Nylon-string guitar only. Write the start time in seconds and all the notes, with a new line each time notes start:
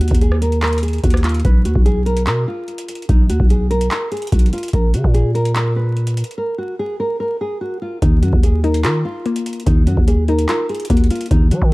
0.01 F#4
0.21 G#4
0.42 A#4
0.63 A#4
0.83 G#4
1.04 F#4
1.24 F4
1.45 B4
1.65 F#4
1.86 G#4
2.06 A#4
2.27 A#4
2.48 F4
3.09 D#4
3.29 F#4
3.50 G#4
3.71 A#4
3.91 A#4
4.12 G#4
4.32 F#4
4.53 F4
4.74 A#4
4.94 F#4
5.14 G#4
5.35 A#4
5.56 A#4
5.76 B4
6.38 A#4
6.58 F#4
6.79 G#4
7.00 A#4
7.20 A#4
7.41 G#4
7.61 F#4
7.82 F4
8.02 D#4
8.23 F#4
8.43 G#4
8.64 A#4
8.84 A#4
9.05 F4
9.67 D#4
9.87 F#4
10.08 G#4
10.29 A#4
10.49 A#4
10.69 G#4
10.90 F#4
11.11 F4
11.31 D#4
11.51 F#4